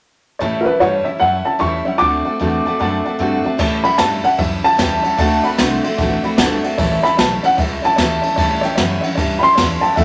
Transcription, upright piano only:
0.61 0.63 A#4 medium
0.66 0.80 B4 medium
0.80 1.05 C#5 medium
1.04 1.19 E5 medium
1.20 1.44 F#5 medium
1.45 1.59 A5 medium
1.60 1.99 C#6 medium
1.98 3.15 D6 medium
3.84 3.98 B5 medium
3.98 4.23 A5 medium
4.24 4.38 F#5 medium
4.38 4.63 E5 medium
4.64 5.42 A5 loud
7.03 7.18 B5 medium
7.19 7.43 A5 medium
7.45 7.58 F#5 medium
7.59 7.83 E5 medium
7.85 8.61 A5 medium
9.39 9.41 B5 medium
9.43 9.81 C6 loud
9.81 9.96 A5 medium
9.97 10.04 E5 medium

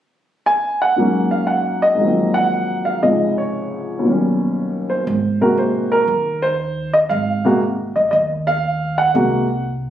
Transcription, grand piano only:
0.46 0.82 G#5 medium
0.82 1.29 F#5 medium
0.96 1.93 G#2 soft
0.96 2.00 F#3 soft
0.96 2.01 A#3 soft
1.01 2.02 C#4 medium
1.31 1.47 F5 medium
1.47 1.84 F#5 medium
1.82 2.30 D#5 medium
1.95 3.00 G#2 soft
1.95 3.01 D#3 soft
1.99 3.01 F3 soft
1.99 3.03 F#3 soft
2.04 3.04 A#3 soft
2.04 3.05 C4 medium
2.34 2.87 F#5 medium
2.85 3.02 F5 medium
3.02 4.04 C#2 soft
3.02 4.05 G#2 soft
3.02 4.05 C3 medium
3.02 4.05 F3 soft
3.02 3.38 D#5 medium
3.38 4.87 C#5 medium
3.99 5.04 D#2 soft
3.99 5.05 B2 soft
4.05 5.07 F#3 soft
4.05 5.08 G3 soft
4.10 5.09 C#4 soft
4.90 5.42 C5 medium
5.41 6.05 C3 medium
5.41 6.06 G#3 soft
5.41 6.06 A#3 soft
5.41 6.06 F#4 medium
5.41 5.57 A#4 medium
5.58 5.94 C5 medium
5.92 6.44 A#4 medium
6.42 6.90 C5 medium
6.93 6.98 D#5 medium
7.09 7.57 F5 medium
7.45 7.60 C3 medium
7.45 7.60 G#3 medium
7.45 7.60 A#3 medium
7.45 7.61 F#4 medium
7.96 8.09 D#5 medium
8.11 8.19 D#5 medium
8.47 9.00 F5 medium
8.98 9.61 F#5 medium
9.14 9.45 C3 soft
9.14 9.46 G#3 soft
9.14 9.46 A#3 soft
9.14 9.46 F#4 medium

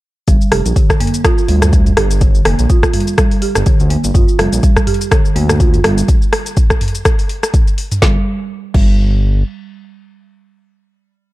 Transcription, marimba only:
0.28 0.40 G3 medium
0.52 0.64 G4 medium
0.76 0.88 D3 medium
1.00 1.13 A#3 medium
1.25 1.37 F4 medium
1.48 1.61 G3 medium
1.73 1.85 G3 medium
1.97 2.09 G4 medium
2.21 2.33 D3 medium
2.46 2.58 A#3 medium
2.70 2.82 F4 medium
2.94 3.06 G3 medium
3.18 3.30 G3 medium
3.42 3.54 G4 medium
3.66 3.79 D3 medium
3.90 4.03 A#3 medium
4.14 4.27 F4 medium
4.39 4.51 G3 medium
4.63 4.75 G3 medium
4.87 4.99 G4 medium
5.11 5.24 D3 medium
5.36 5.48 A#3 medium
5.60 5.72 F4 medium
5.84 5.96 G3 medium
8.02 8.17 G3 medium
8.74 8.89 G3 medium

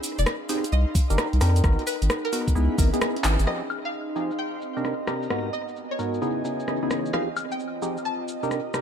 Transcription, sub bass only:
0.18 0.25 F1 medium
0.72 0.85 C2 medium
1.10 1.17 G1 medium
1.33 1.40 C2 medium
1.41 1.62 F2 loud
1.64 1.77 G#1 loud
2.02 2.09 G#1 medium
2.55 2.68 C#2 medium
2.78 2.91 G#1 medium
3.24 3.37 G#1 medium
3.39 3.46 G#1 medium

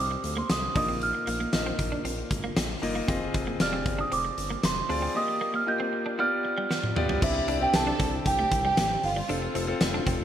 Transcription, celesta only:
0.00 0.35 D6 medium
0.38 0.51 C6 medium
0.51 0.76 D#6 medium
0.77 0.88 D#6 medium
1.03 2.02 F6 medium
3.61 4.01 F6 medium
4.01 4.12 D#6 medium
4.13 4.66 D6 medium
4.65 5.12 C6 medium
5.17 5.56 D#6 loud
5.56 5.68 F6 medium
5.68 6.21 G6 loud
6.20 6.93 F6 loud
7.24 7.63 E5 loud
7.63 7.68 G5 medium
7.75 8.28 A5 loud
8.27 8.65 G5 loud
8.66 9.05 G5 loud
9.05 9.78 F5 medium

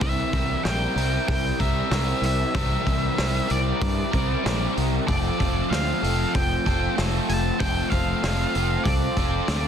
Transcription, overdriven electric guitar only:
0.01 0.71 C3 medium
0.01 0.71 E3 medium
0.01 0.36 G3 medium
0.01 0.35 C4 medium
0.01 0.34 E4 loud
0.01 0.33 A#4 loud
0.34 0.65 G3 medium
0.34 0.66 C4 medium
0.34 0.67 E4 medium
0.34 0.67 A#4 medium
0.65 0.98 G3 medium
0.65 0.97 C4 medium
0.65 0.96 E4 medium
0.65 0.96 A#4 medium
0.96 1.61 G3 medium
0.96 1.61 C4 medium
0.96 1.59 E4 medium
0.96 1.58 A#4 medium
1.59 1.89 G3 medium
1.59 1.90 C4 medium
1.59 1.90 E4 medium
1.59 1.90 A#4 medium
1.89 2.54 G3 medium
1.89 2.55 C4 medium
1.89 2.54 E4 medium
1.89 2.55 A#4 medium
2.54 3.17 C3 medium
2.54 3.18 E3 medium
2.54 2.86 G3 medium
2.54 2.85 C4 loud
2.54 2.85 E4 loud
2.54 2.83 A#4 loud
2.85 3.17 G3 medium
2.85 3.18 C4 medium
2.85 3.18 E4 medium
2.85 3.19 A#4 medium
3.17 3.50 G3 medium
3.17 3.49 C4 medium
3.17 3.48 E4 medium
3.17 3.47 A#4 medium
3.48 4.13 G3 medium
3.48 4.12 C4 medium
3.48 4.11 E4 medium
3.48 4.10 A#4 medium
4.11 4.43 G3 medium
4.11 4.43 C4 medium
4.11 4.43 E4 medium
4.11 4.44 A#4 medium
4.43 5.07 G3 medium
4.43 5.08 C4 medium
4.43 5.06 E4 medium
4.43 5.06 A#4 medium
5.07 7.58 F3 medium
5.07 5.69 A3 medium
5.07 5.40 C4 medium
5.07 5.40 F4 loud
5.07 5.38 A4 medium
5.38 5.70 C4 medium
5.38 5.71 F4 medium
5.38 5.72 A4 medium
5.70 6.95 A3 medium
5.70 6.03 C4 medium
5.70 6.02 F4 medium
5.70 6.01 A4 medium
6.02 6.67 C4 medium
6.02 6.65 F4 medium
6.02 6.64 A4 medium
6.65 6.97 C4 medium
6.65 6.96 F4 medium
6.65 6.97 A4 medium
6.96 7.58 A3 medium
6.96 7.60 C4 medium
6.96 7.60 F4 medium
6.96 7.60 A4 medium
7.58 8.22 F3 medium
7.58 8.22 A3 medium
7.58 7.92 C4 loud
7.58 7.90 F4 medium
7.58 7.89 A4 medium
7.90 8.23 C4 medium
7.90 8.23 F4 medium
7.90 8.24 A4 medium
8.23 8.86 A3 medium
8.23 8.57 C4 medium
8.23 8.55 F4 medium
8.23 8.54 A4 medium
8.55 9.19 C4 medium
8.55 9.18 F4 medium
8.55 9.16 A4 medium
9.17 9.49 C4 medium
9.17 9.49 F4 medium
9.17 9.49 A4 medium
9.48 9.68 A3 medium
9.48 9.68 C4 medium
9.48 9.68 F4 medium
9.48 9.68 A4 medium

